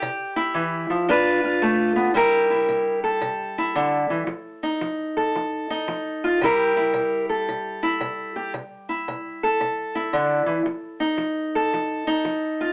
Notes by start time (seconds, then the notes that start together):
Already playing: G4
0.02 C3
0.36 E4
0.54 E3
0.90 F3
1.09 G3 D4 F4 B4
1.44 F4
1.62 A3
1.96 B3
2.14 C3 G3 E4 G4 A#4
2.50 E4
2.68 C3
3.04 A4
3.21 C3
3.58 E4
3.75 D3
4.10 E3
4.27 F3
4.63 D#4
4.81 F3
5.17 A4
5.35 F3
5.70 D#4
5.88 F3
6.24 F4
6.41 C3 G3 E4 G4 A#4
6.77 E4
6.94 C3
7.29 A4
7.49 C3
7.83 E4
8.01 C3
8.36 G4
8.54 C3
8.89 E4
9.08 C3
9.43 A4
9.60 C3
9.95 E4
10.13 D3
10.46 E3
10.66 F3
11.00 D#4
11.18 F3
11.55 A4
11.74 F3
12.07 D#4
12.25 F3
12.61 F4